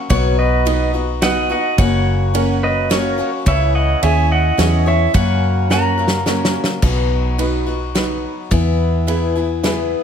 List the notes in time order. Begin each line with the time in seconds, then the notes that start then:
Already playing: C#4
0.10 B1 B2 F#3 B3 D#4 F#4 C#5, kick, ride
0.39 B4 D#5
0.65 F#3 B3 D#4 F#4 B4 D#5, ride
0.94 B3 D#4 F#4
1.22 F#3 B3 D#4 F#4 B4 D#5 F#5, snare, ride
1.49 B3 D#4 F#4 D#5 F#5
1.78 F#1 F#2 C#3 F#3 A#3 C#4 F#4 C#5 F#5, kick, ride
2.34 F#3 A#3 C#4 F#4 A#4 C#5, ride
2.63 B4 D#5
2.90 F#3 A#3 C#4 F#4 A#4 C#5, snare, ride
3.18 F#3 A#3 C#4 F#4
3.46 C#2 C#3 E3 C#4 E4 G#4 C#5 E5, kick, ride
3.75 D#5 F#5
4.02 D#2 C#4 E4 G#4 C#5 E5 G#5, ride
4.32 D#5 F#5
4.58 E2 E3 C#4 E4 G#4 C#5, snare, ride
4.86 C#4 E4 G#4 C#5 E5
5.14 F#2 C#3 F#3 A#3 C#4 A#4 C#5 F#5, kick, ride
5.70 F#3 A#3 C#4 F#4 A#4 C#5 F#5 A#5, snare
5.98 F#3 A#3 C#4 A#4
6.08 snare
6.26 F#3 A#3 C#4 F#4 A#4 C#5, snare
6.45 snare
6.64 snare
6.82 B1 B2 F#3 B3 D#4 F#4, kick, crash
7.38 F#3 B3 D#4 F#4 B4, ride
7.66 B3 D#4 F#4
7.95 F#3 B3 D#4 F#4 B4, snare, ride
8.51 E2 E3 B3 E4 G#4, kick, ride
9.07 E3 B3 E4 G#4 B4, ride
9.35 B3 E4 G#4
9.63 E3 B3 E4 G#4 B4, snare, ride